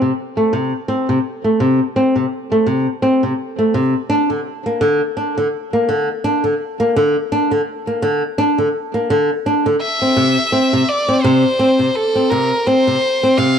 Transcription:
0, 0, Header, 1, 3, 480
1, 0, Start_track
1, 0, Tempo, 714286
1, 838, Time_signature, 4, 2, 24, 8
1, 9132, End_track
2, 0, Start_track
2, 0, Title_t, "Violin"
2, 0, Program_c, 0, 40
2, 6593, Note_on_c, 0, 76, 86
2, 7314, Note_on_c, 0, 74, 82
2, 7325, Note_off_c, 0, 76, 0
2, 7543, Note_on_c, 0, 72, 84
2, 7553, Note_off_c, 0, 74, 0
2, 8032, Note_on_c, 0, 69, 90
2, 8042, Note_off_c, 0, 72, 0
2, 8265, Note_on_c, 0, 70, 88
2, 8275, Note_off_c, 0, 69, 0
2, 8512, Note_on_c, 0, 72, 92
2, 8522, Note_off_c, 0, 70, 0
2, 8989, Note_on_c, 0, 77, 97
2, 8999, Note_off_c, 0, 72, 0
2, 9132, Note_off_c, 0, 77, 0
2, 9132, End_track
3, 0, Start_track
3, 0, Title_t, "Nylon-string guitar"
3, 0, Program_c, 1, 24
3, 11, Note_on_c, 1, 48, 67
3, 72, Note_off_c, 1, 48, 0
3, 248, Note_on_c, 1, 57, 71
3, 345, Note_off_c, 1, 57, 0
3, 355, Note_on_c, 1, 48, 92
3, 484, Note_off_c, 1, 48, 0
3, 593, Note_on_c, 1, 60, 89
3, 723, Note_off_c, 1, 60, 0
3, 732, Note_on_c, 1, 48, 72
3, 792, Note_off_c, 1, 48, 0
3, 970, Note_on_c, 1, 57, 63
3, 1066, Note_off_c, 1, 57, 0
3, 1076, Note_on_c, 1, 48, 90
3, 1205, Note_off_c, 1, 48, 0
3, 1318, Note_on_c, 1, 60, 90
3, 1445, Note_off_c, 1, 60, 0
3, 1449, Note_on_c, 1, 48, 67
3, 1511, Note_off_c, 1, 48, 0
3, 1691, Note_on_c, 1, 57, 73
3, 1786, Note_off_c, 1, 57, 0
3, 1791, Note_on_c, 1, 48, 90
3, 1922, Note_off_c, 1, 48, 0
3, 2031, Note_on_c, 1, 60, 88
3, 2162, Note_off_c, 1, 60, 0
3, 2171, Note_on_c, 1, 48, 71
3, 2232, Note_off_c, 1, 48, 0
3, 2409, Note_on_c, 1, 57, 59
3, 2506, Note_off_c, 1, 57, 0
3, 2515, Note_on_c, 1, 48, 91
3, 2644, Note_off_c, 1, 48, 0
3, 2752, Note_on_c, 1, 62, 96
3, 2882, Note_off_c, 1, 62, 0
3, 2888, Note_on_c, 1, 50, 64
3, 2950, Note_off_c, 1, 50, 0
3, 3131, Note_on_c, 1, 58, 70
3, 3227, Note_off_c, 1, 58, 0
3, 3232, Note_on_c, 1, 50, 96
3, 3362, Note_off_c, 1, 50, 0
3, 3472, Note_on_c, 1, 62, 84
3, 3603, Note_off_c, 1, 62, 0
3, 3612, Note_on_c, 1, 50, 72
3, 3672, Note_off_c, 1, 50, 0
3, 3852, Note_on_c, 1, 58, 69
3, 3947, Note_off_c, 1, 58, 0
3, 3955, Note_on_c, 1, 50, 88
3, 4084, Note_off_c, 1, 50, 0
3, 4195, Note_on_c, 1, 62, 93
3, 4324, Note_off_c, 1, 62, 0
3, 4327, Note_on_c, 1, 50, 62
3, 4390, Note_off_c, 1, 50, 0
3, 4568, Note_on_c, 1, 58, 73
3, 4665, Note_off_c, 1, 58, 0
3, 4680, Note_on_c, 1, 50, 97
3, 4806, Note_off_c, 1, 50, 0
3, 4918, Note_on_c, 1, 62, 94
3, 5046, Note_off_c, 1, 62, 0
3, 5049, Note_on_c, 1, 50, 70
3, 5111, Note_off_c, 1, 50, 0
3, 5290, Note_on_c, 1, 58, 65
3, 5386, Note_off_c, 1, 58, 0
3, 5392, Note_on_c, 1, 50, 90
3, 5522, Note_off_c, 1, 50, 0
3, 5632, Note_on_c, 1, 62, 97
3, 5763, Note_off_c, 1, 62, 0
3, 5768, Note_on_c, 1, 50, 66
3, 5830, Note_off_c, 1, 50, 0
3, 6008, Note_on_c, 1, 58, 69
3, 6105, Note_off_c, 1, 58, 0
3, 6117, Note_on_c, 1, 50, 88
3, 6245, Note_off_c, 1, 50, 0
3, 6358, Note_on_c, 1, 62, 84
3, 6486, Note_off_c, 1, 62, 0
3, 6491, Note_on_c, 1, 50, 70
3, 6552, Note_off_c, 1, 50, 0
3, 6731, Note_on_c, 1, 60, 61
3, 6827, Note_off_c, 1, 60, 0
3, 6831, Note_on_c, 1, 48, 92
3, 6962, Note_off_c, 1, 48, 0
3, 7072, Note_on_c, 1, 60, 94
3, 7202, Note_off_c, 1, 60, 0
3, 7212, Note_on_c, 1, 48, 71
3, 7272, Note_off_c, 1, 48, 0
3, 7449, Note_on_c, 1, 60, 72
3, 7545, Note_off_c, 1, 60, 0
3, 7556, Note_on_c, 1, 48, 102
3, 7684, Note_off_c, 1, 48, 0
3, 7791, Note_on_c, 1, 60, 87
3, 7922, Note_off_c, 1, 60, 0
3, 7924, Note_on_c, 1, 48, 69
3, 7988, Note_off_c, 1, 48, 0
3, 8168, Note_on_c, 1, 60, 69
3, 8265, Note_off_c, 1, 60, 0
3, 8275, Note_on_c, 1, 48, 87
3, 8404, Note_off_c, 1, 48, 0
3, 8514, Note_on_c, 1, 60, 90
3, 8643, Note_off_c, 1, 60, 0
3, 8650, Note_on_c, 1, 48, 67
3, 8712, Note_off_c, 1, 48, 0
3, 8893, Note_on_c, 1, 60, 75
3, 8988, Note_off_c, 1, 60, 0
3, 8993, Note_on_c, 1, 48, 89
3, 9123, Note_off_c, 1, 48, 0
3, 9132, End_track
0, 0, End_of_file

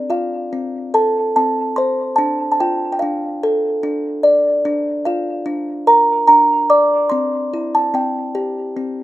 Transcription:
0, 0, Header, 1, 2, 480
1, 0, Start_track
1, 0, Key_signature, -1, "major"
1, 0, Tempo, 836820
1, 1252, Tempo, 824176
1, 1253, Time_signature, 3, 2, 24, 8
1, 5242, End_track
2, 0, Start_track
2, 0, Title_t, "Music box"
2, 0, Program_c, 0, 10
2, 0, Note_on_c, 0, 60, 71
2, 56, Note_on_c, 0, 65, 61
2, 59, Note_on_c, 0, 77, 73
2, 295, Note_off_c, 0, 60, 0
2, 302, Note_on_c, 0, 60, 51
2, 539, Note_on_c, 0, 69, 74
2, 541, Note_on_c, 0, 81, 72
2, 555, Note_off_c, 0, 77, 0
2, 773, Note_off_c, 0, 81, 0
2, 775, Note_off_c, 0, 60, 0
2, 780, Note_on_c, 0, 81, 76
2, 782, Note_on_c, 0, 60, 52
2, 1011, Note_on_c, 0, 84, 78
2, 1017, Note_off_c, 0, 65, 0
2, 1021, Note_on_c, 0, 72, 62
2, 1024, Note_off_c, 0, 81, 0
2, 1238, Note_on_c, 0, 81, 78
2, 1253, Note_on_c, 0, 62, 70
2, 1254, Note_off_c, 0, 69, 0
2, 1255, Note_off_c, 0, 60, 0
2, 1256, Note_off_c, 0, 72, 0
2, 1258, Note_off_c, 0, 84, 0
2, 1439, Note_off_c, 0, 81, 0
2, 1446, Note_on_c, 0, 81, 54
2, 1490, Note_off_c, 0, 81, 0
2, 1497, Note_on_c, 0, 79, 73
2, 1499, Note_on_c, 0, 65, 61
2, 1677, Note_off_c, 0, 79, 0
2, 1684, Note_on_c, 0, 79, 49
2, 1724, Note_on_c, 0, 77, 68
2, 1729, Note_off_c, 0, 79, 0
2, 1734, Note_off_c, 0, 62, 0
2, 1741, Note_on_c, 0, 62, 56
2, 1981, Note_on_c, 0, 69, 78
2, 2206, Note_off_c, 0, 62, 0
2, 2213, Note_on_c, 0, 62, 56
2, 2421, Note_off_c, 0, 77, 0
2, 2446, Note_on_c, 0, 74, 68
2, 2452, Note_off_c, 0, 65, 0
2, 2683, Note_off_c, 0, 62, 0
2, 2686, Note_off_c, 0, 74, 0
2, 2690, Note_on_c, 0, 62, 76
2, 2691, Note_off_c, 0, 69, 0
2, 2924, Note_on_c, 0, 77, 70
2, 2929, Note_on_c, 0, 65, 62
2, 3152, Note_off_c, 0, 62, 0
2, 3159, Note_on_c, 0, 62, 55
2, 3401, Note_on_c, 0, 70, 77
2, 3401, Note_on_c, 0, 82, 74
2, 3415, Note_off_c, 0, 77, 0
2, 3628, Note_off_c, 0, 82, 0
2, 3633, Note_off_c, 0, 62, 0
2, 3635, Note_on_c, 0, 82, 85
2, 3640, Note_on_c, 0, 62, 57
2, 3861, Note_off_c, 0, 82, 0
2, 3881, Note_on_c, 0, 86, 78
2, 3882, Note_on_c, 0, 74, 64
2, 3883, Note_off_c, 0, 65, 0
2, 4113, Note_on_c, 0, 84, 82
2, 4121, Note_off_c, 0, 62, 0
2, 4121, Note_off_c, 0, 70, 0
2, 4123, Note_off_c, 0, 74, 0
2, 4125, Note_on_c, 0, 60, 74
2, 4129, Note_off_c, 0, 86, 0
2, 4369, Note_on_c, 0, 64, 61
2, 4456, Note_off_c, 0, 84, 0
2, 4493, Note_on_c, 0, 81, 73
2, 4597, Note_off_c, 0, 60, 0
2, 4600, Note_off_c, 0, 81, 0
2, 4604, Note_on_c, 0, 60, 57
2, 4609, Note_on_c, 0, 79, 68
2, 4843, Note_on_c, 0, 67, 72
2, 5079, Note_off_c, 0, 60, 0
2, 5086, Note_on_c, 0, 60, 52
2, 5242, Note_off_c, 0, 60, 0
2, 5242, Note_off_c, 0, 64, 0
2, 5242, Note_off_c, 0, 67, 0
2, 5242, Note_off_c, 0, 79, 0
2, 5242, End_track
0, 0, End_of_file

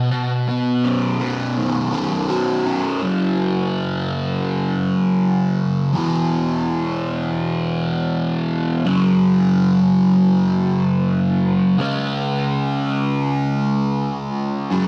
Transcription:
0, 0, Header, 1, 2, 480
1, 0, Start_track
1, 0, Tempo, 730816
1, 66, Time_signature, 4, 2, 24, 8
1, 9771, End_track
2, 0, Start_track
2, 0, Title_t, "Distorted electric guitar"
2, 0, Program_c, 0, 30
2, 73, Note_on_c, 0, 47, 72
2, 317, Note_on_c, 0, 59, 60
2, 552, Note_on_c, 0, 61, 65
2, 784, Note_off_c, 0, 59, 0
2, 792, Note_on_c, 0, 59, 61
2, 1031, Note_on_c, 0, 51, 58
2, 1258, Note_off_c, 0, 61, 0
2, 1266, Note_on_c, 0, 61, 53
2, 1268, Note_off_c, 0, 47, 0
2, 1505, Note_on_c, 0, 66, 68
2, 1736, Note_off_c, 0, 61, 0
2, 1744, Note_on_c, 0, 61, 59
2, 1981, Note_on_c, 0, 42, 79
2, 1983, Note_off_c, 0, 61, 0
2, 1984, Note_off_c, 0, 66, 0
2, 1986, Note_off_c, 0, 51, 0
2, 1987, Note_off_c, 0, 59, 0
2, 1990, Note_on_c, 0, 49, 91
2, 1995, Note_on_c, 0, 54, 91
2, 3884, Note_off_c, 0, 42, 0
2, 3889, Note_off_c, 0, 49, 0
2, 3891, Note_off_c, 0, 54, 0
2, 3897, Note_on_c, 0, 40, 82
2, 3907, Note_on_c, 0, 47, 85
2, 3914, Note_on_c, 0, 52, 95
2, 5803, Note_off_c, 0, 40, 0
2, 5807, Note_off_c, 0, 47, 0
2, 5811, Note_off_c, 0, 52, 0
2, 5812, Note_on_c, 0, 42, 92
2, 5825, Note_on_c, 0, 49, 88
2, 5830, Note_on_c, 0, 54, 99
2, 7723, Note_off_c, 0, 42, 0
2, 7729, Note_off_c, 0, 49, 0
2, 7732, Note_off_c, 0, 54, 0
2, 7738, Note_on_c, 0, 49, 85
2, 7747, Note_on_c, 0, 56, 82
2, 7751, Note_on_c, 0, 61, 100
2, 9649, Note_off_c, 0, 49, 0
2, 9654, Note_off_c, 0, 56, 0
2, 9656, Note_off_c, 0, 61, 0
2, 9660, Note_on_c, 0, 42, 84
2, 9670, Note_on_c, 0, 49, 90
2, 9677, Note_on_c, 0, 54, 98
2, 9771, Note_off_c, 0, 42, 0
2, 9771, Note_off_c, 0, 49, 0
2, 9771, Note_off_c, 0, 54, 0
2, 9771, End_track
0, 0, End_of_file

